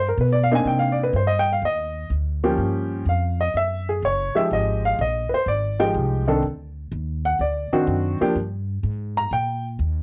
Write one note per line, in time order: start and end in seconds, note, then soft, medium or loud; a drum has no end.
0.00 0.16 G2 medium
0.09 0.17 A#4 medium
0.18 0.64 B2 medium
0.18 0.35 B4 medium
0.33 0.49 D5 medium
0.43 0.54 F5 medium
0.52 1.11 A#3 medium
0.52 1.12 C4 medium
0.52 1.11 D4 medium
0.52 1.12 D#4 medium
0.52 0.64 G#5 medium
0.65 1.12 C3 medium
0.65 0.83 G5 medium
0.79 0.97 F5 medium
0.92 1.03 D5 medium
1.03 1.12 B4 medium
1.13 1.60 G2 medium
1.13 1.31 C5 medium
1.27 1.45 D#5 medium
1.39 1.50 G5 loud
1.53 1.61 F5 medium
1.62 2.09 D#2 medium
1.62 2.09 D#5 medium
2.10 2.57 D2 medium
2.44 3.04 F3 medium
2.44 3.04 A#3 medium
2.44 3.04 C#4 medium
2.44 3.04 G4 medium
2.58 3.05 G2 medium
3.06 3.53 F2 medium
3.06 3.40 F5 medium
3.40 3.55 D#5 medium
3.54 4.01 F#2 medium
3.54 3.88 E5 loud
3.89 4.03 G#4 medium
4.02 4.33 F#1 medium
4.02 4.36 C#5 medium
4.35 4.96 F3 medium
4.35 4.96 G#3 medium
4.35 4.96 D#4 medium
4.35 4.96 G4 medium
4.35 4.51 E5 loud
4.35 muted upright bass stroke soft
4.51 4.97 G#1 medium
4.51 4.84 D#5 medium
4.85 4.99 F5 loud
4.99 5.29 A#1 loud
4.99 5.32 D#5 medium
5.29 5.31 B4 medium
5.29 muted upright bass stroke soft
5.34 5.48 C5 medium
5.46 5.93 G#1 medium
5.46 5.79 D5 medium
5.79 6.24 F3 medium
5.79 6.25 G#3 medium
5.79 6.24 D#4 medium
5.79 6.25 G4 medium
5.79 5.89 G5 medium
5.94 6.41 C2 medium
6.28 6.41 D#3 medium
6.28 6.42 C4 medium
6.28 6.42 D4 medium
6.28 6.42 A4 medium
6.43 6.89 D2 medium
6.92 7.38 D#2 medium
7.25 7.39 F#5 medium
7.39 7.70 D2 medium
7.39 7.72 D5 medium
7.72 8.17 D#3 medium
7.72 8.17 C4 medium
7.72 8.17 D4 medium
7.72 8.17 F#4 medium
7.72 muted upright bass stroke soft
7.87 8.18 F#2 medium
8.21 8.34 F3 medium
8.21 8.34 A#3 medium
8.21 8.34 D4 medium
8.21 8.34 G4 medium
8.21 muted upright bass stroke soft
8.35 8.82 G2 medium
8.83 9.30 G#2 medium
9.17 9.31 A#5 loud
9.31 9.78 A#2 medium
9.31 9.64 G5 medium
9.79 10.03 D#2 medium